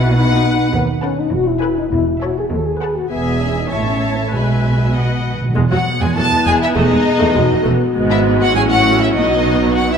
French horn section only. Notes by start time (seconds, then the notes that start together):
0.16 D#4
0.74 B3
1.03 C#4
1.19 D#4
1.32 F#4
1.48 E4
1.78 D#4
1.92 E4
2.22 F#4
2.39 G#4
2.51 A4
2.67 G#4
2.97 F#4
3.10 B3
3.41 C#4
3.56 D#4
3.70 E4
3.86 C#4
4.18 A3
4.32 G#3
6.16 E4
6.76 G#4
7.35 F#4
8.55 E4
9.15 D#4